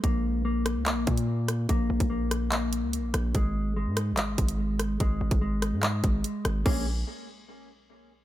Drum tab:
CC |----------------|----------------|----------------|----------------|
HH |x-----x-x-xx--x-|x--x--x-x-x-x-x-|x-----x-x-xx--x-|x--x--x-x-x-x-x-|
CP |--------x-------|--------x-------|--------x-------|--------x-------|
SD |------r-------r-|------r-------r-|------r-------r-|------r-------r-|
BD |o---------o-----|o--o------------|o---------o-----|o--o------o-----|

CC |x---------------|
HH |----------------|
CP |----------------|
SD |----------------|
BD |o---------------|